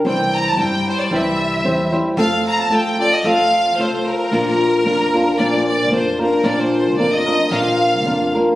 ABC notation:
X:1
M:2/4
L:1/16
Q:"Swing" 1/4=112
K:Bb
V:1 name="Violin section"
g2 b a g2 c d | =e6 z2 | f2 b a g2 d e | f4 c2 B2- |
B8 | d2 d2 c2 B2 | d c3 d e3 | f6 z2 |]
V:2 name="Nylon-string guitar"
[C,=E,G,C=Ec]4 [G,CEc]4 | [C,=E,G,C=Ec]4 [G,CEc]2 [G,CEc]2 | [F,A,CFA]4 [A,CFA]2 [CFA]2 | [F,A,CFA]4 [A,CFA]4 |
[B,,F,B,DFB]4 [B,DFB]2 [B,DFB]2 | [B,,F,B,DFB]4 [B,DFB]2 [B,DFB]2 | [B,,F,B,DFB]4 [B,DFB]2 [B,DFB]2 | [B,,F,B,DFB]4 [B,DFB]2 [B,DFB]2 |]
V:3 name="Upright bass" clef=bass
C,,4 G,,4 | C,,4 =E,,4 | F,,4 C,,4 | F,,4 C,,4 |
B,,,4 F,,4 | B,,,4 F,,4 | B,,,4 F,,4 | B,,,4 F,,4 |]